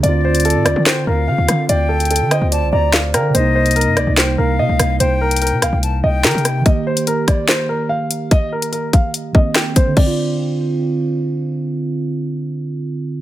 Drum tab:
CC |------------------------------------------------------------------------------------------------|------------------------------------------------------------------------------------------------|------------------------------------------------------------------------------------------------|------------------------------------------------------------------------------------------------|
HH |x-----------------x--x--x--x--------x-----------x-----------------------------------x-----------|x-----------------x--x--x--x--------x-----------x-----------------------x-----------x-----------|x-----------------x--x--x--x--------x-----------x-----------------------------------x-----------|x-----------------x--x--x--x--------x-----------x-----------------------x---x---x---x-----------|
CP |------------------------------------------------x-----------------------------------------------|------------------------------------------------------------------------x-----------------------|------------------------------------------------x-----------------------------------------------|------------------------------------------------------------------------x-----------------------|
SD |------------------------------------r-----------o-----------------------------------r-----------|------------------------------------r-----------------------------------o-----------r-----------|------------------------------------r-----------o-----------------------------------r-----------|------------------------------------r-----------------------------------o-----------r-----------|
BD |------------------------------------------------------------------------------------------------|------------------------------------------------------------------------------------------------|------------------------------------------------------------------------------------------------|------------------------------------------------------------------------------------------------|

CC |------------------------------------------------------------------------------------------------|------------------------------------------------------------------------------------------------|x-----------------------------------------------------------------------------------------------|------------------------------------------------------------------------------------------------|
HH |x-----------------x-----x-----------x-----------x-----------------------------------x-----------|x-----------------x-----x-----------x-----------x-----------------------x-----------x-----------|------------------------------------------------------------------------------------------------|------------------------------------------------------------------------------------------------|
CP |------------------------------------------------x-----------------------------------------------|------------------------------------------------------------------------x-----------------------|------------------------------------------------------------------------------------------------|------------------------------------------------------------------------------------------------|
SD |------------------------------------r-----------o-----------------------------------------------|------------------------------------------------------------------------o-----------------------|------------------------------------------------------------------------------------------------|------------------------------------------------------------------------------------------------|
BD |o-----------------------------------o-----------------------------------------------------------|o-----------------------------------o-----------------------o-----------------------o-----------|o-----------------------------------------------------------------------------------------------|------------------------------------------------------------------------------------------------|